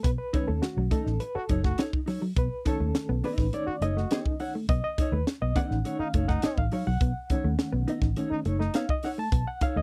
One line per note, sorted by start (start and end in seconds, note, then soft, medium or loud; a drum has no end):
0.03 0.15 B1 loud
0.03 0.15 B3 medium
0.03 0.10 B4 medium
0.03 kick loud
0.03 closed hi-hat medium
0.18 0.49 B4 medium
0.33 1.17 D#3 medium
0.33 1.17 A3 medium
0.33 1.18 C#4 medium
0.33 0.51 D#4 loud
0.33 0.51 A4 loud
0.33 0.52 C#5 loud
0.33 muted clean electric guitar stroke soft
0.33 kick loud
0.33 closed hi-hat medium
0.47 0.59 D#2 medium
0.47 0.58 A3 medium
0.47 0.61 A4 medium
0.62 0.92 F#4 medium
0.62 muted clean electric guitar stroke soft
0.62 snare loud
0.62 closed hi-hat medium
0.77 0.88 B1 medium
0.77 0.87 F#3 medium
0.77 muted clean electric guitar stroke soft
0.91 1.01 A3 medium
0.91 1.09 D#4 medium
0.91 1.22 A4 medium
0.91 1.06 A4 medium
0.91 1.06 D#5 medium
0.91 kick loud
0.91 closed hi-hat medium
1.06 1.17 A1 medium
1.06 muted clean electric guitar stroke soft
1.06 snare soft
1.20 1.35 B4 medium
1.20 muted clean electric guitar stroke soft
1.20 closed hi-hat medium
1.35 1.44 F#4 loud
1.35 1.89 A4 medium
1.35 muted fingered electric bass stroke medium
1.35 muted clean electric guitar stroke medium
1.49 1.71 F#1 medium
1.49 1.60 F#3 medium
1.49 1.67 D#4 medium
1.49 1.64 A4 medium
1.49 1.63 C#5 medium
1.49 kick medium
1.49 closed hi-hat medium
1.64 1.74 A3 medium
1.64 1.83 F#4 loud
1.64 kick medium
1.64 snare soft
1.78 1.96 D#4 medium
1.78 1.93 A4 medium
1.78 1.92 C#5 medium
1.78 muted clean electric guitar stroke soft
1.78 snare loud
1.78 closed hi-hat loud
1.93 muted clean electric guitar stroke soft
1.93 kick loud
2.06 2.18 F#3 medium
2.06 2.21 D#4 medium
2.06 2.21 A4 medium
2.06 2.21 C#5 medium
2.06 snare soft
2.06 open hi-hat medium
2.22 2.32 F#3 medium
2.22 muted clean electric guitar stroke soft
2.36 2.48 B1 loud
2.36 2.47 B3 medium
2.36 2.68 B4 medium
2.36 kick loud
2.36 closed hi-hat medium
2.65 4.94 D#3 medium
2.65 4.94 A3 soft
2.65 4.94 C#4 medium
2.65 2.83 D#4 medium
2.65 2.83 A4 medium
2.65 3.26 A4 medium
2.65 2.84 C#5 medium
2.65 muted clean electric guitar stroke soft
2.65 kick loud
2.65 closed hi-hat medium
2.80 2.91 D#2 medium
2.80 2.90 A3 medium
2.94 muted clean electric guitar stroke soft
2.94 snare loud
2.94 closed hi-hat medium
3.09 3.20 B1 medium
3.09 3.19 B3 loud
3.09 muted clean electric guitar stroke soft
3.24 3.33 B3 medium
3.24 3.44 D#4 medium
3.24 3.39 A4 medium
3.24 3.54 B4 medium
3.24 3.39 D#5 medium
3.24 open hi-hat medium
3.38 3.49 A1 medium
3.38 muted clean electric guitar stroke soft
3.38 kick medium
3.38 snare soft
3.53 3.70 D#4 medium
3.53 3.67 A4 medium
3.53 3.66 C#5 loud
3.53 3.83 D5 medium
3.53 muted clean electric guitar stroke soft
3.53 closed hi-hat medium
3.66 3.76 F#4 loud
3.66 muted clean electric guitar stroke medium
3.66 muted fingered electric bass stroke soft
3.81 4.03 F#1 medium
3.81 3.92 A3 medium
3.81 3.96 D#4 medium
3.81 3.96 A4 medium
3.81 3.96 C#5 medium
3.81 4.42 D#5 loud
3.81 closed hi-hat medium
3.97 4.06 A3 medium
3.97 4.34 F#4 loud
3.97 muted clean electric guitar stroke soft
3.97 snare soft
4.11 4.21 B3 medium
4.11 4.31 D#4 medium
4.11 4.26 A4 medium
4.11 4.25 C#5 medium
4.11 snare loud
4.11 closed hi-hat loud
4.26 muted clean electric guitar stroke soft
4.26 kick loud
4.40 4.53 D#4 medium
4.40 4.54 A4 medium
4.40 4.54 C#5 medium
4.40 4.53 F#5 medium
4.40 muted clean electric guitar stroke soft
4.40 open hi-hat medium
4.55 4.65 A3 medium
4.55 muted clean electric guitar stroke medium
4.69 4.80 B1 loud
4.69 4.79 B3 medium
4.69 4.83 D#5 loud
4.69 kick loud
4.69 closed hi-hat medium
4.84 5.14 D#5 medium
4.98 5.16 D#4 medium
4.98 5.16 A4 medium
4.98 5.16 C#5 loud
4.98 muted clean electric guitar stroke soft
4.98 kick loud
4.98 closed hi-hat medium
5.12 5.23 D#2 medium
5.12 5.23 A3 medium
5.12 5.25 B4 medium
5.27 muted clean electric guitar stroke soft
5.27 snare loud
5.27 closed hi-hat medium
5.41 5.53 B1 medium
5.41 5.52 B3 medium
5.41 5.57 D#5 medium
5.41 muted clean electric guitar stroke soft
5.55 6.39 D#3 medium
5.55 6.39 A3 soft
5.55 5.66 B3 medium
5.55 6.39 C#4 medium
5.55 5.76 D#4 medium
5.55 5.70 A4 medium
5.55 5.70 D#5 loud
5.55 6.01 F#5 loud
5.55 kick loud
5.55 closed hi-hat medium
5.70 5.82 A1 loud
5.70 muted clean electric guitar stroke soft
5.70 snare soft
5.85 6.02 D#4 medium
5.85 6.00 A4 loud
5.85 5.99 C#5 loud
5.85 muted clean electric guitar stroke soft
5.85 closed hi-hat medium
5.99 6.09 D#4 loud
5.99 6.30 F5 medium
5.99 muted fingered electric bass stroke soft
5.99 muted clean electric guitar stroke soft
6.14 6.36 F#1 loud
6.14 6.24 A3 medium
6.14 6.27 D#4 medium
6.14 6.28 A4 medium
6.14 6.27 C#5 medium
6.14 kick medium
6.14 closed hi-hat medium
6.28 6.38 A3 medium
6.28 6.65 D#4 loud
6.28 6.43 F#5 loud
6.28 muted clean electric guitar stroke soft
6.28 kick medium
6.28 snare soft
6.42 6.60 D#4 loud
6.42 6.58 A4 medium
6.42 6.57 C#5 loud
6.42 6.58 D#5 medium
6.42 muted clean electric guitar stroke soft
6.42 muted fingered electric bass stroke soft
6.42 snare loud
6.42 closed hi-hat loud
6.58 6.69 A1 medium
6.58 6.88 F5 medium
6.58 muted clean electric guitar stroke soft
6.58 kick loud
6.71 6.82 F#3 medium
6.71 6.85 D#4 medium
6.71 6.86 A4 medium
6.71 6.86 C#5 medium
6.71 open hi-hat medium
6.87 6.98 B1 loud
6.87 6.96 F#3 medium
6.87 8.27 F#5 medium
6.87 muted clean electric guitar stroke medium
7.01 7.12 B1 loud
7.01 7.11 B3 medium
7.01 kick loud
7.01 closed hi-hat medium
7.30 8.15 D#3 medium
7.30 8.16 A3 medium
7.30 8.16 C#4 medium
7.30 7.47 D#4 medium
7.30 7.48 A4 medium
7.30 7.48 C#5 medium
7.30 muted clean electric guitar stroke soft
7.30 kick loud
7.30 closed hi-hat medium
7.44 7.55 D#2 medium
7.44 7.54 A3 medium
7.59 muted clean electric guitar stroke soft
7.59 snare loud
7.59 closed hi-hat medium
7.73 7.84 B1 loud
7.73 7.82 B3 loud
7.73 muted clean electric guitar stroke soft
7.88 7.97 B3 medium
7.88 8.05 D#4 medium
7.88 8.03 A4 medium
7.88 8.02 D#5 medium
7.88 closed hi-hat medium
8.02 8.13 A1 medium
8.02 muted clean electric guitar stroke soft
8.02 kick loud
8.02 snare soft
8.16 8.43 D#3 soft
8.16 8.43 A3 soft
8.16 8.43 C#4 medium
8.16 8.34 D#4 loud
8.16 8.31 A4 medium
8.16 8.30 C#5 medium
8.16 muted clean electric guitar stroke soft
8.16 closed hi-hat medium
8.30 8.40 D#4 loud
8.30 muted clean electric guitar stroke soft
8.30 muted fingered electric bass stroke medium
8.45 8.67 F#1 medium
8.45 8.55 A3 medium
8.45 8.59 D#4 medium
8.45 8.60 A4 medium
8.45 8.58 C#5 medium
8.45 closed hi-hat medium
8.59 8.70 A3 medium
8.59 8.78 D#4 loud
8.59 muted clean electric guitar stroke soft
8.59 snare soft
8.74 8.84 B3 medium
8.74 8.92 D#4 loud
8.74 8.89 A4 loud
8.74 8.88 C#5 loud
8.74 8.90 F5 medium
8.74 snare loud
8.74 closed hi-hat loud
8.89 9.04 D#5 loud
8.89 muted clean electric guitar stroke soft
8.89 kick loud
9.03 9.17 D#4 medium
9.03 9.18 A4 medium
9.03 9.18 C#5 medium
9.03 9.11 F#5 medium
9.03 muted clean electric guitar stroke soft
9.03 snare soft
9.03 open hi-hat medium
9.18 9.28 A3 medium
9.18 9.48 A5 loud
9.18 muted clean electric guitar stroke soft
9.32 9.43 B1 loud
9.32 9.42 B3 medium
9.32 kick loud
9.32 closed hi-hat medium
9.48 9.62 F#5 medium
9.61 9.79 D#4 medium
9.61 9.79 A4 loud
9.61 9.79 C#5 loud
9.61 9.77 F5 loud
9.61 muted clean electric guitar stroke soft
9.61 kick loud
9.61 closed hi-hat medium
9.76 9.82 D#2 medium
9.76 9.82 A3 medium
9.76 9.82 D#5 medium